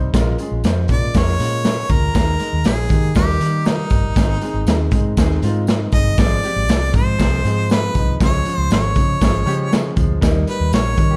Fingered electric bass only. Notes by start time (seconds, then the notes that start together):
0.14 A#1
0.51 A#1
0.64 F2
0.89 A#2
1.15 F2
1.39 A#2
1.89 D2
2.15 D#2
2.53 D#2
2.65 A#1
2.90 D#3
3.15 D#2
3.40 D#3
3.91 G1
4.16 G#1
4.54 G#1
4.66 D#2
4.92 G#2
5.17 D#2
5.42 G#2
5.92 G1
6.18 G#1
6.56 G#1
6.68 C2
6.94 G#2
7.19 C2
7.44 G#2
7.95 C2
8.20 C#2
8.58 C#2
8.70 G#1
8.96 C#3
9.21 G#1
9.46 C#3
9.97 D2
10.22 D#2
10.60 D#2
10.72 A#1
10.98 D#3